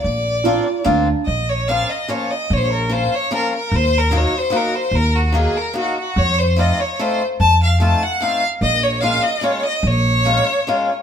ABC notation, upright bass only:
X:1
M:3/4
L:1/8
Q:1/4=147
K:Bb
V:1 name="Upright bass" clef=bass
B,,,4 D,,2 | [K:Bbm] B,,,4 z2 | B,,,4 z2 | E,,4 z2 |
E,,4 z2 | F,,4 z2 | F,,4 z2 | B,,,4 z2 |
B,,,4 z2 |]